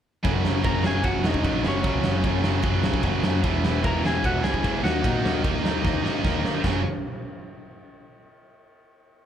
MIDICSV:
0, 0, Header, 1, 7, 480
1, 0, Start_track
1, 0, Tempo, 398936
1, 304, Time_signature, 4, 2, 24, 8
1, 11138, End_track
2, 0, Start_track
2, 0, Title_t, "Lead electric guitar"
2, 0, Program_c, 0, 29
2, 776, Note_on_c, 0, 70, 76
2, 786, Note_on_c, 0, 82, 92
2, 1002, Note_off_c, 0, 70, 0
2, 1005, Note_off_c, 0, 82, 0
2, 1032, Note_on_c, 0, 68, 73
2, 1042, Note_on_c, 0, 80, 102
2, 1240, Note_off_c, 0, 68, 0
2, 1244, Note_on_c, 0, 66, 76
2, 1264, Note_on_c, 0, 78, 99
2, 1278, Note_off_c, 0, 80, 0
2, 1474, Note_off_c, 0, 66, 0
2, 1501, Note_on_c, 0, 63, 74
2, 1526, Note_off_c, 0, 78, 0
2, 1526, Note_on_c, 0, 75, 91
2, 1946, Note_off_c, 0, 63, 0
2, 1991, Note_off_c, 0, 75, 0
2, 2005, Note_on_c, 0, 61, 63
2, 2023, Note_on_c, 0, 73, 80
2, 2903, Note_off_c, 0, 61, 0
2, 2911, Note_off_c, 0, 73, 0
2, 4630, Note_on_c, 0, 70, 85
2, 4651, Note_on_c, 0, 82, 107
2, 4849, Note_off_c, 0, 70, 0
2, 4860, Note_off_c, 0, 82, 0
2, 4882, Note_on_c, 0, 68, 77
2, 4890, Note_on_c, 0, 80, 94
2, 5096, Note_off_c, 0, 68, 0
2, 5117, Note_on_c, 0, 78, 97
2, 5122, Note_off_c, 0, 80, 0
2, 5125, Note_on_c, 0, 66, 70
2, 5328, Note_off_c, 0, 66, 0
2, 5333, Note_off_c, 0, 78, 0
2, 5333, Note_on_c, 0, 68, 80
2, 5336, Note_on_c, 0, 80, 84
2, 5785, Note_off_c, 0, 68, 0
2, 5785, Note_off_c, 0, 80, 0
2, 5818, Note_on_c, 0, 78, 74
2, 5826, Note_on_c, 0, 66, 63
2, 6494, Note_off_c, 0, 78, 0
2, 6498, Note_off_c, 0, 66, 0
2, 11138, End_track
3, 0, Start_track
3, 0, Title_t, "Distorted electric guitar"
3, 0, Program_c, 1, 30
3, 288, Note_on_c, 1, 42, 95
3, 299, Note_on_c, 1, 49, 95
3, 301, Note_on_c, 1, 54, 93
3, 311, Note_on_c, 1, 58, 103
3, 318, Note_on_c, 1, 61, 108
3, 522, Note_off_c, 1, 42, 0
3, 524, Note_off_c, 1, 49, 0
3, 527, Note_on_c, 1, 42, 83
3, 534, Note_off_c, 1, 54, 0
3, 538, Note_on_c, 1, 49, 83
3, 539, Note_on_c, 1, 54, 94
3, 542, Note_off_c, 1, 58, 0
3, 547, Note_on_c, 1, 58, 87
3, 552, Note_off_c, 1, 61, 0
3, 557, Note_on_c, 1, 61, 98
3, 768, Note_off_c, 1, 49, 0
3, 773, Note_off_c, 1, 42, 0
3, 778, Note_on_c, 1, 42, 93
3, 783, Note_on_c, 1, 49, 96
3, 786, Note_off_c, 1, 54, 0
3, 791, Note_on_c, 1, 54, 99
3, 792, Note_off_c, 1, 58, 0
3, 797, Note_on_c, 1, 58, 109
3, 799, Note_off_c, 1, 61, 0
3, 804, Note_on_c, 1, 61, 99
3, 1007, Note_off_c, 1, 49, 0
3, 1009, Note_off_c, 1, 42, 0
3, 1014, Note_on_c, 1, 42, 88
3, 1022, Note_on_c, 1, 49, 82
3, 1024, Note_off_c, 1, 54, 0
3, 1029, Note_on_c, 1, 54, 91
3, 1030, Note_off_c, 1, 58, 0
3, 1035, Note_off_c, 1, 61, 0
3, 1035, Note_on_c, 1, 58, 95
3, 1040, Note_on_c, 1, 61, 86
3, 1225, Note_off_c, 1, 42, 0
3, 1236, Note_off_c, 1, 49, 0
3, 1239, Note_on_c, 1, 42, 97
3, 1246, Note_off_c, 1, 54, 0
3, 1250, Note_on_c, 1, 49, 99
3, 1254, Note_off_c, 1, 58, 0
3, 1259, Note_off_c, 1, 61, 0
3, 1261, Note_on_c, 1, 54, 96
3, 1269, Note_on_c, 1, 58, 101
3, 1273, Note_on_c, 1, 61, 113
3, 1469, Note_off_c, 1, 42, 0
3, 1476, Note_off_c, 1, 49, 0
3, 1480, Note_off_c, 1, 54, 0
3, 1484, Note_off_c, 1, 58, 0
3, 1484, Note_on_c, 1, 42, 89
3, 1491, Note_on_c, 1, 49, 94
3, 1493, Note_off_c, 1, 61, 0
3, 1495, Note_on_c, 1, 54, 93
3, 1498, Note_on_c, 1, 58, 93
3, 1508, Note_on_c, 1, 61, 100
3, 1704, Note_off_c, 1, 42, 0
3, 1712, Note_off_c, 1, 49, 0
3, 1719, Note_on_c, 1, 42, 103
3, 1722, Note_off_c, 1, 54, 0
3, 1726, Note_off_c, 1, 58, 0
3, 1726, Note_on_c, 1, 49, 99
3, 1733, Note_off_c, 1, 61, 0
3, 1736, Note_on_c, 1, 54, 112
3, 1740, Note_on_c, 1, 58, 107
3, 1747, Note_on_c, 1, 61, 106
3, 1951, Note_off_c, 1, 42, 0
3, 1962, Note_off_c, 1, 49, 0
3, 1965, Note_on_c, 1, 42, 82
3, 1970, Note_off_c, 1, 58, 0
3, 1972, Note_off_c, 1, 54, 0
3, 1976, Note_on_c, 1, 49, 90
3, 1982, Note_off_c, 1, 61, 0
3, 1984, Note_on_c, 1, 58, 104
3, 1986, Note_on_c, 1, 54, 85
3, 1997, Note_on_c, 1, 61, 100
3, 2185, Note_off_c, 1, 42, 0
3, 2190, Note_off_c, 1, 49, 0
3, 2199, Note_on_c, 1, 42, 90
3, 2201, Note_off_c, 1, 54, 0
3, 2205, Note_on_c, 1, 49, 100
3, 2208, Note_off_c, 1, 58, 0
3, 2214, Note_off_c, 1, 61, 0
3, 2216, Note_on_c, 1, 54, 104
3, 2222, Note_on_c, 1, 58, 106
3, 2229, Note_on_c, 1, 61, 106
3, 2436, Note_off_c, 1, 42, 0
3, 2444, Note_off_c, 1, 49, 0
3, 2449, Note_off_c, 1, 54, 0
3, 2450, Note_on_c, 1, 42, 85
3, 2458, Note_on_c, 1, 49, 85
3, 2460, Note_off_c, 1, 58, 0
3, 2463, Note_off_c, 1, 61, 0
3, 2464, Note_on_c, 1, 54, 97
3, 2474, Note_on_c, 1, 58, 91
3, 2478, Note_on_c, 1, 61, 87
3, 2673, Note_off_c, 1, 42, 0
3, 2682, Note_off_c, 1, 49, 0
3, 2688, Note_off_c, 1, 54, 0
3, 2688, Note_on_c, 1, 42, 87
3, 2695, Note_off_c, 1, 58, 0
3, 2697, Note_on_c, 1, 49, 105
3, 2702, Note_off_c, 1, 61, 0
3, 2703, Note_on_c, 1, 54, 94
3, 2709, Note_on_c, 1, 58, 107
3, 2716, Note_on_c, 1, 61, 105
3, 2897, Note_off_c, 1, 42, 0
3, 2911, Note_off_c, 1, 49, 0
3, 2912, Note_on_c, 1, 42, 91
3, 2919, Note_off_c, 1, 54, 0
3, 2921, Note_off_c, 1, 58, 0
3, 2926, Note_on_c, 1, 49, 90
3, 2928, Note_off_c, 1, 61, 0
3, 2934, Note_on_c, 1, 54, 94
3, 2936, Note_on_c, 1, 58, 93
3, 2942, Note_on_c, 1, 61, 86
3, 3139, Note_off_c, 1, 42, 0
3, 3153, Note_off_c, 1, 49, 0
3, 3154, Note_on_c, 1, 42, 93
3, 3161, Note_off_c, 1, 54, 0
3, 3165, Note_off_c, 1, 58, 0
3, 3168, Note_on_c, 1, 49, 99
3, 3172, Note_off_c, 1, 61, 0
3, 3175, Note_on_c, 1, 54, 105
3, 3179, Note_on_c, 1, 58, 97
3, 3187, Note_on_c, 1, 61, 103
3, 3372, Note_off_c, 1, 42, 0
3, 3377, Note_off_c, 1, 49, 0
3, 3384, Note_off_c, 1, 54, 0
3, 3387, Note_on_c, 1, 42, 91
3, 3391, Note_on_c, 1, 49, 84
3, 3396, Note_off_c, 1, 58, 0
3, 3398, Note_on_c, 1, 54, 97
3, 3402, Note_off_c, 1, 61, 0
3, 3410, Note_on_c, 1, 58, 93
3, 3417, Note_on_c, 1, 61, 92
3, 3623, Note_off_c, 1, 42, 0
3, 3632, Note_off_c, 1, 49, 0
3, 3637, Note_on_c, 1, 42, 99
3, 3640, Note_off_c, 1, 54, 0
3, 3644, Note_off_c, 1, 58, 0
3, 3647, Note_on_c, 1, 49, 96
3, 3651, Note_off_c, 1, 61, 0
3, 3654, Note_on_c, 1, 54, 102
3, 3659, Note_on_c, 1, 58, 104
3, 3665, Note_on_c, 1, 61, 109
3, 3860, Note_off_c, 1, 42, 0
3, 3870, Note_off_c, 1, 49, 0
3, 3875, Note_on_c, 1, 42, 97
3, 3877, Note_off_c, 1, 54, 0
3, 3882, Note_off_c, 1, 58, 0
3, 3884, Note_on_c, 1, 49, 90
3, 3888, Note_off_c, 1, 61, 0
3, 3892, Note_on_c, 1, 54, 100
3, 3897, Note_on_c, 1, 58, 102
3, 3903, Note_on_c, 1, 61, 104
3, 4112, Note_off_c, 1, 42, 0
3, 4117, Note_off_c, 1, 49, 0
3, 4121, Note_off_c, 1, 54, 0
3, 4122, Note_on_c, 1, 52, 93
3, 4123, Note_off_c, 1, 58, 0
3, 4126, Note_off_c, 1, 61, 0
3, 4132, Note_on_c, 1, 56, 96
3, 4135, Note_on_c, 1, 59, 100
3, 4143, Note_on_c, 1, 64, 105
3, 4344, Note_off_c, 1, 52, 0
3, 4355, Note_off_c, 1, 56, 0
3, 4356, Note_off_c, 1, 59, 0
3, 4359, Note_on_c, 1, 52, 85
3, 4362, Note_off_c, 1, 64, 0
3, 4370, Note_on_c, 1, 56, 93
3, 4370, Note_on_c, 1, 59, 83
3, 4376, Note_on_c, 1, 64, 89
3, 4592, Note_off_c, 1, 52, 0
3, 4601, Note_off_c, 1, 56, 0
3, 4607, Note_on_c, 1, 52, 89
3, 4608, Note_off_c, 1, 59, 0
3, 4612, Note_off_c, 1, 64, 0
3, 4615, Note_on_c, 1, 56, 97
3, 4622, Note_on_c, 1, 59, 106
3, 4627, Note_on_c, 1, 64, 108
3, 4825, Note_off_c, 1, 52, 0
3, 4839, Note_off_c, 1, 56, 0
3, 4839, Note_on_c, 1, 52, 88
3, 4845, Note_off_c, 1, 59, 0
3, 4850, Note_off_c, 1, 64, 0
3, 4853, Note_on_c, 1, 56, 79
3, 4860, Note_on_c, 1, 59, 98
3, 4865, Note_on_c, 1, 64, 93
3, 5059, Note_off_c, 1, 52, 0
3, 5066, Note_off_c, 1, 56, 0
3, 5069, Note_off_c, 1, 59, 0
3, 5073, Note_on_c, 1, 52, 90
3, 5077, Note_off_c, 1, 64, 0
3, 5081, Note_on_c, 1, 56, 105
3, 5084, Note_on_c, 1, 59, 97
3, 5091, Note_on_c, 1, 64, 102
3, 5307, Note_off_c, 1, 52, 0
3, 5318, Note_off_c, 1, 56, 0
3, 5322, Note_on_c, 1, 52, 96
3, 5325, Note_off_c, 1, 59, 0
3, 5332, Note_on_c, 1, 56, 96
3, 5333, Note_off_c, 1, 64, 0
3, 5340, Note_on_c, 1, 59, 86
3, 5347, Note_on_c, 1, 64, 96
3, 5558, Note_off_c, 1, 52, 0
3, 5567, Note_off_c, 1, 56, 0
3, 5572, Note_on_c, 1, 52, 104
3, 5576, Note_off_c, 1, 59, 0
3, 5582, Note_on_c, 1, 56, 95
3, 5583, Note_off_c, 1, 64, 0
3, 5590, Note_on_c, 1, 59, 100
3, 5598, Note_on_c, 1, 64, 116
3, 5803, Note_off_c, 1, 52, 0
3, 5808, Note_off_c, 1, 56, 0
3, 5812, Note_off_c, 1, 59, 0
3, 5816, Note_off_c, 1, 64, 0
3, 5822, Note_on_c, 1, 51, 113
3, 5831, Note_on_c, 1, 54, 105
3, 5835, Note_on_c, 1, 58, 106
3, 5841, Note_on_c, 1, 63, 115
3, 6034, Note_off_c, 1, 51, 0
3, 6046, Note_off_c, 1, 54, 0
3, 6049, Note_on_c, 1, 51, 92
3, 6057, Note_off_c, 1, 58, 0
3, 6061, Note_off_c, 1, 63, 0
3, 6061, Note_on_c, 1, 54, 91
3, 6071, Note_on_c, 1, 58, 96
3, 6075, Note_on_c, 1, 63, 98
3, 6281, Note_off_c, 1, 51, 0
3, 6294, Note_off_c, 1, 54, 0
3, 6296, Note_on_c, 1, 51, 78
3, 6303, Note_off_c, 1, 58, 0
3, 6305, Note_off_c, 1, 63, 0
3, 6309, Note_on_c, 1, 54, 89
3, 6318, Note_on_c, 1, 58, 84
3, 6320, Note_on_c, 1, 63, 87
3, 6516, Note_off_c, 1, 51, 0
3, 6527, Note_off_c, 1, 54, 0
3, 6530, Note_on_c, 1, 51, 96
3, 6534, Note_off_c, 1, 58, 0
3, 6534, Note_off_c, 1, 63, 0
3, 6541, Note_on_c, 1, 54, 96
3, 6549, Note_on_c, 1, 58, 109
3, 6549, Note_on_c, 1, 63, 114
3, 6755, Note_off_c, 1, 51, 0
3, 6763, Note_off_c, 1, 54, 0
3, 6770, Note_on_c, 1, 51, 80
3, 6771, Note_off_c, 1, 58, 0
3, 6778, Note_off_c, 1, 63, 0
3, 6778, Note_on_c, 1, 54, 81
3, 6786, Note_on_c, 1, 58, 94
3, 6793, Note_on_c, 1, 63, 97
3, 6988, Note_off_c, 1, 51, 0
3, 6999, Note_off_c, 1, 54, 0
3, 7003, Note_on_c, 1, 51, 96
3, 7007, Note_off_c, 1, 58, 0
3, 7014, Note_on_c, 1, 54, 104
3, 7015, Note_off_c, 1, 63, 0
3, 7022, Note_on_c, 1, 58, 95
3, 7029, Note_on_c, 1, 63, 112
3, 7236, Note_off_c, 1, 51, 0
3, 7242, Note_off_c, 1, 54, 0
3, 7250, Note_off_c, 1, 58, 0
3, 7251, Note_on_c, 1, 51, 90
3, 7257, Note_on_c, 1, 54, 94
3, 7260, Note_off_c, 1, 63, 0
3, 7265, Note_on_c, 1, 58, 95
3, 7274, Note_on_c, 1, 63, 93
3, 7476, Note_off_c, 1, 51, 0
3, 7485, Note_off_c, 1, 54, 0
3, 7490, Note_on_c, 1, 51, 87
3, 7491, Note_off_c, 1, 58, 0
3, 7493, Note_off_c, 1, 63, 0
3, 7499, Note_on_c, 1, 54, 101
3, 7505, Note_on_c, 1, 58, 96
3, 7507, Note_on_c, 1, 63, 108
3, 7735, Note_off_c, 1, 51, 0
3, 7740, Note_off_c, 1, 54, 0
3, 7749, Note_on_c, 1, 51, 90
3, 7750, Note_off_c, 1, 58, 0
3, 7755, Note_off_c, 1, 63, 0
3, 7755, Note_on_c, 1, 54, 95
3, 7765, Note_on_c, 1, 58, 100
3, 7769, Note_on_c, 1, 63, 100
3, 7974, Note_off_c, 1, 51, 0
3, 7976, Note_off_c, 1, 58, 0
3, 7977, Note_off_c, 1, 54, 0
3, 7977, Note_on_c, 1, 42, 93
3, 7984, Note_off_c, 1, 63, 0
3, 7987, Note_on_c, 1, 49, 95
3, 7990, Note_on_c, 1, 58, 94
3, 7992, Note_on_c, 1, 54, 90
3, 7994, Note_on_c, 1, 61, 103
3, 8175, Note_off_c, 1, 42, 0
3, 8180, Note_off_c, 1, 49, 0
3, 8181, Note_off_c, 1, 58, 0
3, 8182, Note_off_c, 1, 54, 0
3, 8183, Note_off_c, 1, 61, 0
3, 11138, End_track
4, 0, Start_track
4, 0, Title_t, "Distorted electric guitar"
4, 0, Program_c, 2, 30
4, 2965, Note_on_c, 2, 42, 76
4, 3635, Note_off_c, 2, 42, 0
4, 4172, Note_on_c, 2, 52, 102
4, 4847, Note_off_c, 2, 52, 0
4, 4905, Note_on_c, 2, 40, 73
4, 5567, Note_off_c, 2, 40, 0
4, 5621, Note_on_c, 2, 52, 89
4, 5828, Note_off_c, 2, 52, 0
4, 7305, Note_on_c, 2, 51, 66
4, 7752, Note_off_c, 2, 51, 0
4, 11138, End_track
5, 0, Start_track
5, 0, Title_t, "Distorted electric guitar"
5, 0, Program_c, 3, 30
5, 4128, Note_on_c, 3, 40, 110
5, 4135, Note_on_c, 3, 47, 99
5, 4361, Note_off_c, 3, 47, 0
5, 4363, Note_off_c, 3, 40, 0
5, 4376, Note_on_c, 3, 47, 94
5, 4378, Note_on_c, 3, 40, 84
5, 4595, Note_off_c, 3, 40, 0
5, 4606, Note_off_c, 3, 47, 0
5, 4610, Note_on_c, 3, 40, 100
5, 4620, Note_on_c, 3, 47, 103
5, 4830, Note_off_c, 3, 40, 0
5, 4841, Note_off_c, 3, 47, 0
5, 4845, Note_on_c, 3, 40, 84
5, 4856, Note_on_c, 3, 47, 94
5, 5075, Note_off_c, 3, 40, 0
5, 5086, Note_off_c, 3, 47, 0
5, 5089, Note_on_c, 3, 40, 92
5, 5101, Note_on_c, 3, 47, 95
5, 5321, Note_off_c, 3, 40, 0
5, 5322, Note_off_c, 3, 47, 0
5, 5335, Note_on_c, 3, 40, 78
5, 5336, Note_on_c, 3, 47, 93
5, 5559, Note_off_c, 3, 47, 0
5, 5561, Note_off_c, 3, 40, 0
5, 5573, Note_on_c, 3, 47, 101
5, 5575, Note_on_c, 3, 40, 92
5, 5803, Note_off_c, 3, 47, 0
5, 5805, Note_off_c, 3, 40, 0
5, 11138, End_track
6, 0, Start_track
6, 0, Title_t, "Picked electric bass"
6, 0, Program_c, 4, 34
6, 302, Note_on_c, 4, 30, 90
6, 520, Note_off_c, 4, 30, 0
6, 552, Note_on_c, 4, 30, 94
6, 764, Note_off_c, 4, 30, 0
6, 775, Note_on_c, 4, 30, 94
6, 995, Note_off_c, 4, 30, 0
6, 1026, Note_on_c, 4, 30, 87
6, 1241, Note_off_c, 4, 30, 0
6, 1256, Note_on_c, 4, 30, 85
6, 1475, Note_off_c, 4, 30, 0
6, 1503, Note_on_c, 4, 28, 96
6, 1718, Note_off_c, 4, 28, 0
6, 1736, Note_on_c, 4, 34, 94
6, 1954, Note_off_c, 4, 34, 0
6, 1979, Note_on_c, 4, 30, 89
6, 2196, Note_off_c, 4, 30, 0
6, 2216, Note_on_c, 4, 37, 98
6, 2434, Note_off_c, 4, 37, 0
6, 2457, Note_on_c, 4, 30, 93
6, 2675, Note_off_c, 4, 30, 0
6, 2696, Note_on_c, 4, 30, 89
6, 3132, Note_off_c, 4, 30, 0
6, 3178, Note_on_c, 4, 30, 89
6, 3395, Note_off_c, 4, 30, 0
6, 3419, Note_on_c, 4, 35, 93
6, 3636, Note_off_c, 4, 35, 0
6, 3658, Note_on_c, 4, 30, 94
6, 3876, Note_off_c, 4, 30, 0
6, 3886, Note_on_c, 4, 42, 87
6, 4109, Note_off_c, 4, 42, 0
6, 4137, Note_on_c, 4, 28, 93
6, 4355, Note_off_c, 4, 28, 0
6, 4380, Note_on_c, 4, 28, 100
6, 4598, Note_off_c, 4, 28, 0
6, 4626, Note_on_c, 4, 28, 98
6, 4841, Note_off_c, 4, 28, 0
6, 4849, Note_on_c, 4, 28, 94
6, 5072, Note_off_c, 4, 28, 0
6, 5101, Note_on_c, 4, 28, 92
6, 5319, Note_off_c, 4, 28, 0
6, 5339, Note_on_c, 4, 37, 97
6, 5558, Note_off_c, 4, 37, 0
6, 5591, Note_on_c, 4, 32, 93
6, 5805, Note_off_c, 4, 32, 0
6, 5815, Note_on_c, 4, 39, 88
6, 6037, Note_off_c, 4, 39, 0
6, 6071, Note_on_c, 4, 46, 98
6, 6286, Note_off_c, 4, 46, 0
6, 6310, Note_on_c, 4, 39, 99
6, 6526, Note_off_c, 4, 39, 0
6, 6551, Note_on_c, 4, 39, 98
6, 6985, Note_off_c, 4, 39, 0
6, 7029, Note_on_c, 4, 39, 92
6, 7246, Note_off_c, 4, 39, 0
6, 7257, Note_on_c, 4, 44, 101
6, 7479, Note_off_c, 4, 44, 0
6, 7521, Note_on_c, 4, 39, 90
6, 7733, Note_off_c, 4, 39, 0
6, 7753, Note_on_c, 4, 51, 84
6, 7968, Note_off_c, 4, 51, 0
6, 7994, Note_on_c, 4, 30, 97
6, 8214, Note_off_c, 4, 30, 0
6, 11138, End_track
7, 0, Start_track
7, 0, Title_t, "Drums"
7, 295, Note_on_c, 9, 51, 78
7, 298, Note_on_c, 9, 36, 108
7, 415, Note_off_c, 9, 51, 0
7, 418, Note_off_c, 9, 36, 0
7, 542, Note_on_c, 9, 38, 105
7, 663, Note_off_c, 9, 38, 0
7, 772, Note_on_c, 9, 51, 73
7, 777, Note_on_c, 9, 36, 111
7, 892, Note_off_c, 9, 51, 0
7, 897, Note_off_c, 9, 36, 0
7, 1013, Note_on_c, 9, 38, 109
7, 1134, Note_off_c, 9, 38, 0
7, 1247, Note_on_c, 9, 51, 76
7, 1255, Note_on_c, 9, 36, 106
7, 1367, Note_off_c, 9, 51, 0
7, 1375, Note_off_c, 9, 36, 0
7, 1494, Note_on_c, 9, 38, 118
7, 1614, Note_off_c, 9, 38, 0
7, 1615, Note_on_c, 9, 36, 92
7, 1735, Note_off_c, 9, 36, 0
7, 1738, Note_on_c, 9, 36, 94
7, 1738, Note_on_c, 9, 51, 81
7, 1858, Note_off_c, 9, 36, 0
7, 1858, Note_off_c, 9, 51, 0
7, 1980, Note_on_c, 9, 38, 107
7, 2100, Note_off_c, 9, 38, 0
7, 2212, Note_on_c, 9, 51, 85
7, 2217, Note_on_c, 9, 36, 118
7, 2333, Note_off_c, 9, 51, 0
7, 2337, Note_off_c, 9, 36, 0
7, 2452, Note_on_c, 9, 38, 114
7, 2573, Note_off_c, 9, 38, 0
7, 2694, Note_on_c, 9, 36, 103
7, 2695, Note_on_c, 9, 51, 69
7, 2814, Note_off_c, 9, 36, 0
7, 2815, Note_off_c, 9, 51, 0
7, 2934, Note_on_c, 9, 38, 104
7, 3054, Note_off_c, 9, 38, 0
7, 3159, Note_on_c, 9, 51, 73
7, 3173, Note_on_c, 9, 36, 108
7, 3279, Note_off_c, 9, 51, 0
7, 3293, Note_off_c, 9, 36, 0
7, 3410, Note_on_c, 9, 38, 111
7, 3531, Note_off_c, 9, 38, 0
7, 3533, Note_on_c, 9, 36, 90
7, 3644, Note_on_c, 9, 51, 74
7, 3653, Note_off_c, 9, 36, 0
7, 3654, Note_on_c, 9, 36, 101
7, 3764, Note_off_c, 9, 51, 0
7, 3774, Note_off_c, 9, 36, 0
7, 3893, Note_on_c, 9, 38, 110
7, 4013, Note_off_c, 9, 38, 0
7, 4135, Note_on_c, 9, 51, 81
7, 4137, Note_on_c, 9, 36, 109
7, 4256, Note_off_c, 9, 51, 0
7, 4258, Note_off_c, 9, 36, 0
7, 4386, Note_on_c, 9, 38, 113
7, 4506, Note_off_c, 9, 38, 0
7, 4621, Note_on_c, 9, 51, 73
7, 4623, Note_on_c, 9, 36, 113
7, 4741, Note_off_c, 9, 51, 0
7, 4743, Note_off_c, 9, 36, 0
7, 4877, Note_on_c, 9, 38, 104
7, 4997, Note_off_c, 9, 38, 0
7, 5105, Note_on_c, 9, 36, 110
7, 5108, Note_on_c, 9, 51, 79
7, 5225, Note_off_c, 9, 36, 0
7, 5229, Note_off_c, 9, 51, 0
7, 5343, Note_on_c, 9, 38, 120
7, 5462, Note_on_c, 9, 36, 87
7, 5463, Note_off_c, 9, 38, 0
7, 5583, Note_off_c, 9, 36, 0
7, 5587, Note_on_c, 9, 36, 93
7, 5587, Note_on_c, 9, 51, 79
7, 5707, Note_off_c, 9, 36, 0
7, 5707, Note_off_c, 9, 51, 0
7, 5840, Note_on_c, 9, 38, 113
7, 5961, Note_off_c, 9, 38, 0
7, 6068, Note_on_c, 9, 36, 117
7, 6073, Note_on_c, 9, 51, 80
7, 6188, Note_off_c, 9, 36, 0
7, 6193, Note_off_c, 9, 51, 0
7, 6323, Note_on_c, 9, 38, 105
7, 6443, Note_off_c, 9, 38, 0
7, 6551, Note_on_c, 9, 36, 119
7, 6553, Note_on_c, 9, 51, 77
7, 6671, Note_off_c, 9, 36, 0
7, 6674, Note_off_c, 9, 51, 0
7, 6803, Note_on_c, 9, 38, 106
7, 6923, Note_off_c, 9, 38, 0
7, 7034, Note_on_c, 9, 36, 113
7, 7048, Note_on_c, 9, 38, 67
7, 7154, Note_off_c, 9, 36, 0
7, 7169, Note_off_c, 9, 38, 0
7, 7284, Note_on_c, 9, 38, 75
7, 7404, Note_off_c, 9, 38, 0
7, 7515, Note_on_c, 9, 36, 108
7, 7521, Note_on_c, 9, 38, 93
7, 7635, Note_off_c, 9, 36, 0
7, 7642, Note_off_c, 9, 38, 0
7, 7764, Note_on_c, 9, 38, 96
7, 7884, Note_off_c, 9, 38, 0
7, 7991, Note_on_c, 9, 36, 97
7, 7991, Note_on_c, 9, 55, 85
7, 7997, Note_on_c, 9, 38, 104
7, 8111, Note_off_c, 9, 36, 0
7, 8111, Note_off_c, 9, 55, 0
7, 8117, Note_off_c, 9, 38, 0
7, 11138, End_track
0, 0, End_of_file